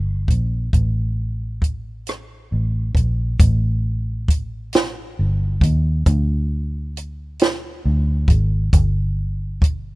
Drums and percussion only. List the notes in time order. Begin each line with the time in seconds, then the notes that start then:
0.28 kick, closed hi-hat
0.73 kick, closed hi-hat
1.62 kick, closed hi-hat
2.07 cross-stick, closed hi-hat
2.95 kick, closed hi-hat
3.40 kick, closed hi-hat
4.28 kick, closed hi-hat
4.73 snare, closed hi-hat
5.61 kick, closed hi-hat
6.06 kick, closed hi-hat
6.97 closed hi-hat
7.39 snare, closed hi-hat
8.28 kick, closed hi-hat
8.73 kick, closed hi-hat
9.62 kick, closed hi-hat